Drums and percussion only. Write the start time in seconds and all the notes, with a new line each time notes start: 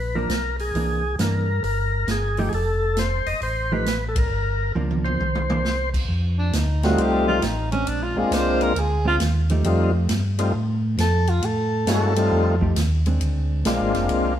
0.29 snare, closed hi-hat
0.59 open hi-hat
0.75 open hi-hat
1.19 snare, closed hi-hat
1.64 open hi-hat
2.08 snare, closed hi-hat
2.37 open hi-hat
2.52 open hi-hat
2.97 snare, closed hi-hat
3.26 open hi-hat
3.41 open hi-hat
3.86 snare, closed hi-hat
4.16 kick, ride
4.76 high tom
4.91 high tom
5.05 high tom
5.20 mid tom
5.35 mid tom
5.50 mid tom
5.65 snare
5.94 kick, crash
6.53 snare, hi-hat pedal, ride
6.83 snare, ride
6.98 ride
7.42 snare, hi-hat pedal, ride
7.72 ride
7.87 ride
8.32 snare, hi-hat pedal, ride
8.61 ride
8.76 ride
9.20 snare, hi-hat pedal, ride
9.49 ride
9.64 ride
10.09 snare, hi-hat pedal, ride
10.39 ride
10.98 snare, hi-hat pedal, ride
11.27 ride
11.42 ride
11.87 snare, hi-hat pedal, ride
12.16 ride
12.61 kick
12.76 snare, hi-hat pedal, ride
13.06 ride
13.21 ride
13.65 snare, hi-hat pedal, ride
13.95 snare, ride
14.09 ride